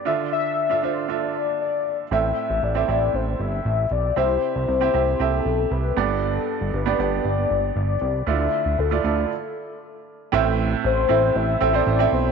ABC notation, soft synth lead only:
X:1
M:4/4
L:1/16
Q:1/4=117
K:Am
V:1 name="Soft synth lead"
e2 e4 c2 d4 d3 z | e4 d4 c2 e4 d2 | c4 c4 A4 B3 z | A4 B4 d4 d4 |
e4 A8 z4 | z4 c4 e3 d3 c2 |]